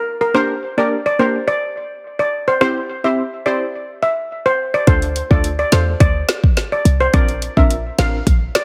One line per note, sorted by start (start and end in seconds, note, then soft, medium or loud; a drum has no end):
0.21 0.29 A#4 medium
0.34 0.53 A#3 medium
0.34 0.54 D4 medium
0.34 0.54 G4 medium
0.34 0.54 A#4 loud
0.34 0.44 C5 loud
0.77 0.96 A#3 medium
0.77 0.96 D4 medium
0.77 0.96 G4 medium
0.77 0.96 A#4 medium
0.77 0.86 D5 medium
1.06 1.14 D5 medium
1.19 1.38 A#3 medium
1.19 1.38 D4 medium
1.19 1.39 G4 medium
1.19 1.39 A#4 medium
1.19 1.29 C5 medium
1.48 1.88 D5 loud
2.19 2.27 D5 medium
2.48 2.56 C5 medium
2.61 2.80 C4 loud
2.61 2.80 E4 medium
2.61 2.80 G4 medium
2.61 2.78 C5 loud
2.61 2.80 C5 loud
3.04 3.22 C4 medium
3.04 3.22 E4 medium
3.04 3.22 G4 medium
3.04 3.22 C5 medium
3.04 3.12 E5 medium
3.46 3.65 C4 medium
3.46 3.65 E4 medium
3.46 3.65 G4 medium
3.46 3.65 C5 medium
3.46 3.55 D5 medium
4.03 4.12 E5 medium
4.46 4.54 C5 medium
4.74 4.82 D5 medium
4.87 5.22 D2 medium
4.87 5.06 A3 loud
4.87 5.06 D4 medium
4.87 5.07 F4 medium
4.87 5.07 A4 loud
4.87 4.96 C5 loud
4.87 kick loud
4.87 closed hi-hat medium
5.02 closed hi-hat soft
5.16 closed hi-hat medium
5.30 5.64 D2 medium
5.30 5.48 A3 medium
5.30 5.49 D4 medium
5.30 5.49 F4 medium
5.30 5.49 A4 medium
5.30 5.39 D5 medium
5.30 kick medium
5.44 closed hi-hat medium
5.59 5.67 D5 medium
5.72 5.95 E2 medium
5.72 5.91 A3 medium
5.72 5.91 D4 medium
5.72 5.91 F4 medium
5.72 5.91 A4 medium
5.72 5.81 C5 medium
5.72 snare loud
5.72 closed hi-hat medium
6.00 6.23 D2 loud
6.00 6.41 D5 loud
6.00 kick medium
6.00 closed hi-hat medium
6.29 snare loud
6.29 closed hi-hat medium
6.44 kick loud
6.57 snare medium
6.57 closed hi-hat medium
6.72 6.80 D5 medium
6.85 7.08 C2 medium
6.85 closed hi-hat medium
7.00 7.09 C5 medium
7.13 7.49 A#1 loud
7.13 7.33 C4 medium
7.13 7.33 D4 medium
7.13 7.33 F4 medium
7.13 7.33 A#4 loud
7.13 7.31 D5 loud
7.13 kick loud
7.13 closed hi-hat medium
7.29 closed hi-hat soft
7.42 closed hi-hat medium
7.57 7.90 A#1 medium
7.57 7.75 C4 medium
7.57 7.75 D4 medium
7.57 7.75 F4 medium
7.57 7.75 A#4 medium
7.57 7.65 E5 medium
7.57 kick medium
7.70 closed hi-hat medium
7.98 8.21 A1 loud
7.98 8.18 C4 medium
7.98 8.18 D4 medium
7.98 8.18 F4 medium
7.98 8.18 A#4 medium
7.98 8.08 F5 medium
7.98 snare loud
7.98 closed hi-hat medium
8.27 8.50 A#1 loud
8.27 kick medium
8.27 closed hi-hat medium
8.55 8.64 D5 medium
8.55 snare loud
8.55 closed hi-hat medium